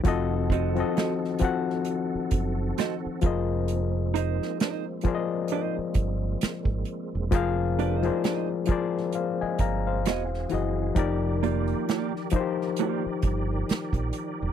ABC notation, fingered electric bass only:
X:1
M:4/4
L:1/16
Q:"Swing 16ths" 1/4=66
K:Bbmix
V:1 name="Fingered electric bass" clef=bass
F,,,4 z6 _G,,,2 z2 F,,,2- | F,,,4 z6 G,,,2 z A,,, z =E,,, | F,,,4 z6 G,,,2 =E,,,2 ^F,,,2 | F,,,4 z6 G,,,2 z B,,, z =E,,, |]